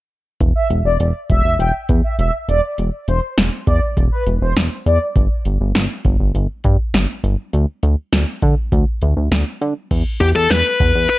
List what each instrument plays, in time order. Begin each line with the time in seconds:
0.41 analog synth bass E1, kick, closed hi-hat
0.56 analog polysynth E5
0.70 analog synth bass E1, closed hi-hat
0.85 analog synth bass E1, analog polysynth D5
1.00 analog synth bass E1, closed hi-hat
1.30 analog synth bass E1, analog polysynth E5, kick, closed hi-hat
1.44 analog synth bass E1
1.59 analog synth bass E1, analog polysynth G5, closed hi-hat
1.89 analog synth bass E2, kick, closed hi-hat
2.04 analog polysynth E5
2.19 analog synth bass E1, analog polysynth E5, closed hi-hat
2.48 analog synth bass E1, analog polysynth D5, closed hi-hat
2.78 analog synth bass E1, closed hi-hat
3.08 analog synth bass E1, analog polysynth C5, closed hi-hat
3.38 analog synth bass E1, snare, closed hi-hat
3.67 analog synth bass E2, analog polysynth D5, kick, closed hi-hat
3.97 analog synth bass E1, kick, closed hi-hat
4.12 analog polysynth B4
4.26 analog synth bass E1, closed hi-hat
4.42 analog synth bass E1, analog polysynth C5
4.56 analog synth bass E1, snare, closed hi-hat
4.86 analog synth bass E2, analog polysynth D5, closed hi-hat
5.16 analog synth bass G1, kick, closed hi-hat
5.45 analog synth bass G1, closed hi-hat
5.60 analog synth bass G1
5.75 analog synth bass G1, snare, closed hi-hat
6.05 analog synth bass G1, kick, closed hi-hat
6.20 analog synth bass G1
6.35 analog synth bass G1, closed hi-hat
6.64 analog synth bass G2, kick, closed hi-hat
6.94 analog synth bass G1, snare, closed hi-hat
7.24 analog synth bass G1, closed hi-hat
7.53 analog synth bass D2, closed hi-hat
7.83 analog synth bass D2, closed hi-hat
8.12 analog synth bass D2, snare, closed hi-hat
8.42 analog synth bass D3, kick, closed hi-hat
8.72 analog synth bass D2, kick, closed hi-hat
9.02 analog synth bass D2, closed hi-hat
9.17 analog synth bass D2
9.32 analog synth bass D2, snare, closed hi-hat
9.61 analog synth bass D3, closed hi-hat
9.91 analog synth bass E2, kick, closed hi-hat, crash
10.21 analog synth bass E2, lead electric guitar G4, closed hi-hat
10.35 analog synth bass E2, lead electric guitar A4
10.50 analog synth bass E2, lead electric guitar B4, snare, closed hi-hat
10.80 analog synth bass E2, kick, closed hi-hat
10.95 analog synth bass E2
11.09 lead electric guitar B4, closed hi-hat